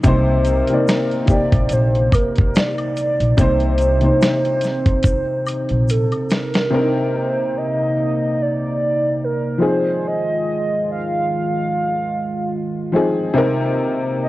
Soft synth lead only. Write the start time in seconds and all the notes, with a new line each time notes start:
0.47 A#4
1.31 D5
1.73 C5
2.14 A#4
2.55 D5
3.39 C5
5.90 A4
6.32 A#4
7.16 C5
7.57 D#5
8.42 D5
9.24 A#4
9.65 C5
10.07 D#5
10.91 F5
14.23 D#5